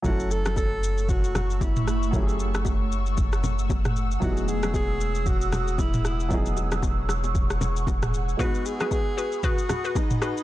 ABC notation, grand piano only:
X:1
M:4/4
L:1/8
Q:"Swing 16ths" 1/4=115
K:F#dor
V:1 name="Grand piano"
[F,A,CEA]8 | [F,A,CE=G^G]8 | [F,B,DE=G^G]8 | [F,B,DEG]8 |
[G,B,DFB]8 |]